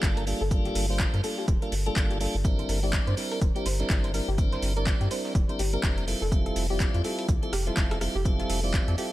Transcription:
Already playing: tonewheel organ G3 A#3 D4 F4 A4
0.03 analog synth bass G1, kick, snare, clap, closed hi-hat, shaker
0.17 synth arpeggio sound A#4, closed hi-hat
0.26 tonewheel organ G3 A#3 D4 F4 A4, open hi-hat, shaker
0.41 analog synth bass G1, synth arpeggio sound A4
0.51 tonewheel organ G3 A#3 D4 F4 A4, kick, closed hi-hat, shaker
0.65 synth arpeggio sound G4, snare, closed hi-hat
0.75 analog synth bass G1, synth arpeggio sound A#4, open hi-hat, shaker
0.89 tonewheel organ G3 A#3 D4 F4 C5
1.00 kick, snare, clap, closed hi-hat, shaker
1.14 analog synth bass G2, synth arpeggio sound A#4, snare, closed hi-hat
1.23 tonewheel organ G3 A#3 D4 F4 A4, synth arpeggio sound A4, open hi-hat, shaker
1.38 synth arpeggio sound G4, snare
1.48 analog synth bass D1, kick, closed hi-hat, shaker
1.62 tonewheel organ G3 A#3 D4 F4 A4, synth arpeggio sound A#4, closed hi-hat
1.72 analog synth bass G1, open hi-hat, shaker
1.86 tonewheel organ G3 A#3 D4 F4 A4, synth arpeggio sound A4, closed hi-hat
1.96 analog synth bass G1, kick, snare, clap, closed hi-hat, shaker
2.11 synth arpeggio sound G4, closed hi-hat
2.20 tonewheel organ G3 A#3 D4 F4 A4, synth arpeggio sound A#4, open hi-hat, shaker
2.35 analog synth bass G1
2.44 tonewheel organ G3 C4 D4 E4 A#4, kick, closed hi-hat, shaker
2.59 synth arpeggio sound C5, closed hi-hat
2.69 analog synth bass G1, synth arpeggio sound A#4, open hi-hat, shaker
2.83 tonewheel organ G3 C4 D4 E4 D5, synth arpeggio sound G4
2.93 kick, snare, clap, closed hi-hat, shaker
3.07 analog synth bass G2, synth arpeggio sound C5, snare, closed hi-hat
3.17 tonewheel organ G3 C4 D4 E4 A#4, open hi-hat, shaker
3.32 synth arpeggio sound A#4, closed hi-hat
3.42 analog synth bass D1, kick, closed hi-hat, shaker
3.55 tonewheel organ G3 C4 D4 E4 A#4, synth arpeggio sound G4, closed hi-hat
3.66 analog synth bass G1, synth arpeggio sound C5, open hi-hat, shaker
3.79 tonewheel organ G3 C4 D4 E4 A#4, snare, closed hi-hat
3.90 analog synth bass G1, kick, snare, clap, closed hi-hat, shaker
4.04 synth arpeggio sound C5, closed hi-hat
4.14 tonewheel organ G3 C4 D4 E4 A#4, synth arpeggio sound A#4, open hi-hat, shaker
4.28 analog synth bass G1, synth arpeggio sound G4
4.38 tonewheel organ G3 C4 D4 E4 A#4, kick, closed hi-hat, shaker
4.52 synth arpeggio sound C5, snare, closed hi-hat
4.62 analog synth bass G1, open hi-hat, shaker
4.76 tonewheel organ G3 C4 D4 E4 D5, synth arpeggio sound A#4, closed hi-hat
4.87 kick, snare, clap, closed hi-hat, shaker
5.01 analog synth bass G2, synth arpeggio sound G4, snare, closed hi-hat
5.10 tonewheel organ G3 C4 D4 E4 A#4, synth arpeggio sound C5, open hi-hat, shaker
5.25 snare
5.35 analog synth bass D1, kick, closed hi-hat, shaker
5.49 tonewheel organ G3 C4 D4 E4 A#4, synth arpeggio sound C5, closed hi-hat
5.59 analog synth bass G1, synth arpeggio sound G4, open hi-hat, shaker
5.73 tonewheel organ G3 C4 D4 E4 A#4, synth arpeggio sound A#4, closed hi-hat
5.83 analog synth bass F1, kick, snare, clap, closed hi-hat, shaker
5.98 synth arpeggio sound A#4, closed hi-hat
6.07 tonewheel organ G3 C4 E4 F4 A4, open hi-hat, shaker
6.22 analog synth bass F1, synth arpeggio sound A4
6.31 tonewheel organ G3 C4 E4 F4 A4, kick, closed hi-hat, shaker
6.46 synth arpeggio sound A4, closed hi-hat
6.56 analog synth bass F1, open hi-hat, shaker
6.70 tonewheel organ G3 C4 E4 F4 D5, synth arpeggio sound G4
6.80 kick, snare, clap, closed hi-hat, shaker
6.94 analog synth bass F2, synth arpeggio sound F4, snare, closed hi-hat
7.04 tonewheel organ G3 C4 E4 F4 A4, synth arpeggio sound A4, open hi-hat, shaker
7.19 closed hi-hat
7.29 analog synth bass C2, kick, closed hi-hat, shaker
7.42 tonewheel organ G3 C4 E4 F4 A4, synth arpeggio sound A4, closed hi-hat
7.53 analog synth bass F1, synth arpeggio sound G4, cross-stick, open hi-hat, shaker
7.66 tonewheel organ G3 C4 E4 F4 A4, synth arpeggio sound F4, snare, closed hi-hat
7.77 analog synth bass F1, kick, snare, clap, closed hi-hat, shaker
7.91 synth arpeggio sound A4, cross-stick, closed hi-hat
8.01 tonewheel organ G3 C4 E4 F4 A4, cross-stick, open hi-hat, shaker
8.15 analog synth bass F1, synth arpeggio sound G4
8.25 tonewheel organ G3 C4 E4 F4 A4, kick, closed hi-hat, shaker
8.40 synth arpeggio sound F4, snare, closed hi-hat
8.50 analog synth bass F1, synth arpeggio sound A4, open hi-hat, shaker
8.63 tonewheel organ G3 C4 E4 F4 D5
8.74 kick, snare, clap, closed hi-hat, shaker
8.88 analog synth bass F2, synth arpeggio sound A4, snare, closed hi-hat
8.97 tonewheel organ G3 C4 E4 F4 A4, synth arpeggio sound G4, open hi-hat, shaker

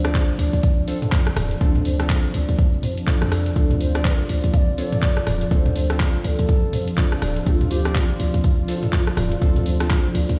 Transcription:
Already playing: 808-style bass D2, analog synth pad C3 F3 D4
0.04 synth stab C4 D4 F4 D5, cross-stick, closed hi-hat, cabasa
0.14 marimba F4, kick, clap, closed hi-hat, cabasa
0.30 cabasa
0.39 808-style bass D2, marimba D5, open hi-hat, cabasa
0.53 808-style bass D2, closed hi-hat, cabasa
0.63 marimba C4, kick, closed hi-hat, cabasa
0.78 cabasa
0.88 synth stab C4 D4 F4 A4, marimba C5, open hi-hat, cabasa
1.02 closed hi-hat, mid tom, cabasa
1.12 marimba F4, kick, clap, closed hi-hat, cabasa
1.27 cross-stick, cabasa
1.36 808-style bass D1, marimba D5, cross-stick, mid tom, open hi-hat, cabasa
1.51 closed hi-hat, cabasa
1.61 808-style bass D2, synth stab C4 D4 F4 A4, marimba D4, kick, closed hi-hat, cabasa
1.75 closed hi-hat, mid tom, cabasa
1.85 marimba C5, open hi-hat, cabasa
2.00 synth stab C4 D4 F4 A4, cross-stick, closed hi-hat, cabasa
2.10 marimba F4, kick, clap, closed hi-hat, cabasa
2.25 cabasa
2.34 808-style bass D2, marimba D5, open hi-hat, cabasa
2.49 808-style bass D2, closed hi-hat, cabasa
2.59 marimba C4, kick, closed hi-hat, cabasa
2.74 cabasa
2.83 marimba C5, mid tom, open hi-hat, cabasa
2.98 closed hi-hat, cabasa
3.07 synth stab C4 D4 F4 A4, marimba F4, kick, clap, closed hi-hat, cabasa
3.22 808-style bass F2, cross-stick, cabasa
3.32 marimba D5, cross-stick, open hi-hat, cabasa
3.46 closed hi-hat, cabasa
3.56 808-style bass D2, synth stab C4 D4 F4 A4, marimba D4, analog synth pad F4, bansuri A4, kick, closed hi-hat, cabasa
3.71 closed hi-hat, mid tom, cabasa
3.80 bansuri C5, marimba C5, open hi-hat, cabasa
3.95 synth stab C4 D4 F4 D5, cross-stick, closed hi-hat, cabasa
4.05 kick, clap, closed hi-hat, cabasa
4.20 cabasa
4.29 808-style bass D2, marimba D5, open hi-hat, cabasa
4.44 808-style bass D2, closed hi-hat, cabasa
4.53 marimba C4, bansuri F5, kick, closed hi-hat, cabasa
4.57 bansuri D5
4.69 cabasa
4.78 synth stab C4 D4 F4 A4, marimba C5, bansuri D5, open hi-hat, cabasa
4.92 closed hi-hat, mid tom, cabasa
5.02 marimba F4, kick, clap, closed hi-hat, cabasa
5.17 cross-stick, cabasa
5.27 808-style bass D1, marimba D5, cross-stick, mid tom, open hi-hat, cabasa
5.41 closed hi-hat, cabasa
5.51 808-style bass D2, synth stab C4 D4 F4 A4, marimba D4, bansuri D5, kick, closed hi-hat, cabasa
5.56 bansuri C5
5.66 closed hi-hat, mid tom, cabasa
5.75 marimba C5, open hi-hat, cabasa
5.90 synth stab C4 D4 F4 A4, cross-stick, closed hi-hat, cabasa
6.00 marimba F4, kick, clap, closed hi-hat, cabasa
6.15 cabasa
6.24 808-style bass D2, bansuri A4 C5, marimba D5, open hi-hat, cabasa
6.39 808-style bass D2, closed hi-hat, cabasa
6.49 marimba C4, kick, closed hi-hat, cabasa
6.64 cabasa
6.73 marimba C5, mid tom, open hi-hat, cabasa
6.88 closed hi-hat, cabasa
6.97 synth stab C4 D4 F4 A4, marimba F4, kick, clap, closed hi-hat, cabasa
7.12 cross-stick, cabasa
7.22 808-style bass D1, marimba D5, cross-stick, open hi-hat, cabasa
7.36 closed hi-hat, cabasa
7.46 808-style bass D2, synth stab C4 D4 F4 A4, marimba D4, bansuri G4, kick, closed hi-hat, cabasa
7.51 bansuri F4
7.61 closed hi-hat, mid tom, cabasa
7.71 bansuri G4, marimba C5, open hi-hat, cabasa
7.85 synth stab C4 D4 F4 D5, cross-stick, closed hi-hat, cabasa
7.95 marimba F4, bansuri F4 G4, kick, clap, closed hi-hat, cabasa
8.10 cabasa
8.19 808-style bass D2, bansuri G4, marimba D5, open hi-hat, cabasa
8.24 bansuri F4
8.34 808-style bass D2, closed hi-hat, cabasa
8.44 marimba C4, kick, closed hi-hat, cabasa
8.59 cabasa
8.68 synth stab C4 D4 F4 A4, marimba C5, open hi-hat, cabasa
8.83 closed hi-hat, mid tom, cabasa
8.93 marimba F4, kick, clap, closed hi-hat, cabasa
9.07 cross-stick, cabasa
9.17 808-style bass D1, marimba D5, cross-stick, mid tom, open hi-hat, cabasa
9.32 closed hi-hat, cabasa
9.41 808-style bass D2, synth stab C4 D4 F4 A4, marimba D4, kick, closed hi-hat, cabasa
9.56 closed hi-hat, mid tom, cabasa
9.66 marimba C5, open hi-hat, cabasa
9.80 synth stab C4 D4 F4 A4, cross-stick, closed hi-hat, cabasa
9.90 marimba F4, kick, clap, closed hi-hat, cabasa
10.05 cabasa
10.15 808-style bass D2, marimba D5, open hi-hat, cabasa
10.29 808-style bass D2, closed hi-hat, cabasa

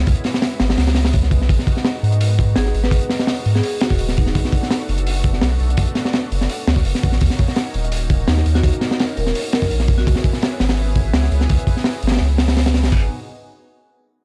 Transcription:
Already playing: analog synth pad G#3 B3 C#4 E4
0.07 sub bass C#2, kick, open hi-hat
0.15 closed hi-hat
0.24 snare, open hi-hat
0.34 snare
0.42 snare, open hi-hat
0.60 sub bass G#1, snare, open hi-hat
0.70 snare, open hi-hat
0.77 sub bass C#2, snare, open hi-hat
0.87 snare, open hi-hat
0.95 snare, open hi-hat
1.05 snare, open hi-hat
1.13 kick, open hi-hat
1.23 snare
1.31 kick, open hi-hat
1.41 sub bass B1, snare
1.49 sub bass G#1, analog synth pad D#4 F#4, kick, open hi-hat
1.59 snare
1.67 kick, open hi-hat
1.77 snare
1.84 snare, open hi-hat
2.03 sub bass G#2, open hi-hat
2.12 closed hi-hat
2.21 open hi-hat
2.39 kick, open hi-hat
2.56 sub bass G#1, marimba G#4, snare, open hi-hat
2.66 snare
2.74 sub bass G#1, open hi-hat
2.83 marimba B4, snare
2.91 sub bass G#1, kick, open hi-hat
3.01 closed hi-hat
3.10 snare, open hi-hat
3.19 snare
3.27 snare, open hi-hat
3.46 sub bass G#2, open hi-hat
3.55 marimba G#4, snare
3.63 marimba G#4, open hi-hat
3.80 marimba F#4, snare, open hi-hat
3.90 sub bass D#1, marimba F#4, kick
3.99 open hi-hat
4.08 snare
4.17 marimba D#4, kick, open hi-hat
4.27 marimba D#4, snare
4.35 sub bass B1, analog synth pad A3 D4, kick, open hi-hat
4.45 snare
4.52 kick, open hi-hat
4.63 snare
4.71 snare, open hi-hat
4.89 sub bass F#1, open hi-hat
4.98 closed hi-hat
5.07 open hi-hat
5.24 kick, open hi-hat
5.33 snare
5.42 sub bass B1, snare, open hi-hat
5.60 sub bass B1, open hi-hat
5.70 closed hi-hat
5.77 sub bass B1, kick, open hi-hat
5.87 closed hi-hat
5.95 snare, open hi-hat
6.05 snare
6.13 snare, open hi-hat
6.31 sub bass F#1, open hi-hat
6.41 snare
6.49 open hi-hat
6.67 sub bass D2, snare, open hi-hat
6.76 kick
6.85 sub bass F#1, open hi-hat
6.95 snare
7.03 sub bass A1, kick, open hi-hat
7.12 snare
7.21 sub bass D#2, analog synth pad A#3 C#4 D#4, kick, open hi-hat
7.30 snare
7.39 kick, open hi-hat
7.48 snare
7.56 snare, open hi-hat
7.74 sub bass D#1, open hi-hat
7.84 closed hi-hat
7.92 open hi-hat
8.10 kick, open hi-hat
8.28 sub bass D#2, marimba D#4, snare, open hi-hat
8.37 snare
8.46 sub bass D#2, open hi-hat
8.55 marimba F#4, snare
8.64 sub bass D#2, kick, open hi-hat
8.73 closed hi-hat
8.81 snare, open hi-hat
8.91 snare
8.99 snare, open hi-hat
9.17 sub bass D#1, marimba A#4, open hi-hat
9.27 snare
9.35 open hi-hat
9.52 marimba A#4, snare, open hi-hat
9.62 sub bass A#1, kick
9.71 open hi-hat
9.80 snare
9.88 kick, open hi-hat
9.98 marimba F#4, snare
10.06 sub bass C#2, analog synth pad B3 E4 G#4, kick, open hi-hat
10.15 snare
10.24 kick, open hi-hat
10.33 snare
10.42 snare, open hi-hat
10.60 sub bass G#1, snare, open hi-hat
10.69 snare, open hi-hat
10.77 open hi-hat
10.95 kick, open hi-hat
11.13 sub bass C#2, snare, open hi-hat
11.23 snare
11.31 sub bass C#2, open hi-hat
11.41 snare
11.49 sub bass C#2, kick, open hi-hat
11.59 closed hi-hat
11.67 kick, open hi-hat
11.77 snare
11.84 snare, open hi-hat
12.02 sub bass G#1, open hi-hat
12.07 snare, open hi-hat
12.12 snare, open hi-hat
12.17 snare, open hi-hat
12.21 sub bass C#2
12.38 snare, open hi-hat
12.48 snare, open hi-hat
12.57 snare, open hi-hat
12.66 snare, open hi-hat
12.74 snare, open hi-hat
12.83 sub bass B1, snare, open hi-hat
12.92 sub bass G#1, analog synth pad B3 D#4 F#4 G#4, kick, crash

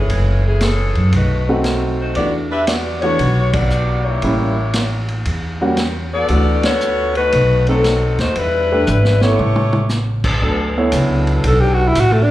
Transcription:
Already playing: saxophone section E3 A3 C#4 G#4
0.10 upright bass F#1, ride
0.47 saxophone section E3 A3 C#4 G#4
0.61 saxophone section E3 C#4 G#4 A4, snare, hi-hat pedal, ride
0.95 upright bass F#2, ride
1.12 upright bass B1, saxophone section D#4 F#4 B4, ride
1.17 saxophone section A3
1.49 grand piano A3 C4 D#4 F#4
1.64 snare, hi-hat pedal, ride
2.01 saxophone section A3 D#4 F#4 C5
2.15 upright bass E2, grand piano E3 A3 D4 F#4, saxophone section B3 F#4 G4 D5, ride
2.50 saxophone section D4 G4 B4 E5
2.67 saxophone section B3 F#4 G4 D5, snare, hi-hat pedal, ride
3.02 grand piano E3 A3 D4 F#4, saxophone section B3 F#4 G4 C#5, ride
3.19 upright bass B1, ride
3.52 saxophone section B3 F#4 G4 D5, kick, ride
3.70 hi-hat pedal
4.04 saxophone section A#3 E4 G4 C#5
4.22 upright bass A1, grand piano G3 A#3 C#4 E4, ride
4.73 snare, hi-hat pedal, ride
5.08 ride
5.25 upright bass E2, ride
5.61 grand piano G3 A#3 C#4 F#4
5.77 snare, hi-hat pedal, ride
6.14 saxophone section B3 F#4 A4 D5
6.28 upright bass D2, grand piano E3 A3 D4 F#4, ride
6.63 saxophone section B3 F#4 A4 C#5, snare, ride
6.81 hi-hat pedal
7.15 saxophone section A3 D#4 F#4 B4, ride
7.32 upright bass B1, ride
7.67 saxophone section F#3 C4 D#4 A4, grand piano A3 C4 D#4 A4, ride
7.84 snare, hi-hat pedal, ride
8.18 upright bass D#2, saxophone section A3 D#4 F#4 C5, snare, ride
8.36 upright bass E2, saxophone section G3 D4 E4 B4, ride
8.72 grand piano A3 D4 G4 B4
8.87 upright bass G#1, hi-hat pedal, high tom
9.05 snare
9.21 saxophone section A3 E4 G4 C#5, grand piano B3 E4 A4 C#5, snare
9.39 upright bass A1, mid tom
9.56 mid tom
9.73 mid tom
9.89 snare, hi-hat pedal
10.24 kick, crash
10.41 upright bass D2, trombone section F#3 B3 D4 A4
10.77 grand piano B3 E4 A4 C#5
10.92 upright bass C#2, hi-hat pedal, ride
11.27 ride
11.44 upright bass B1, alto saxophone A4, ride
11.61 alto saxophone G4
11.74 alto saxophone F#4
11.88 alto saxophone E4
11.95 upright bass A1, hi-hat pedal, ride
12.00 alto saxophone F#4
12.13 alto saxophone A3
12.23 alto saxophone D4

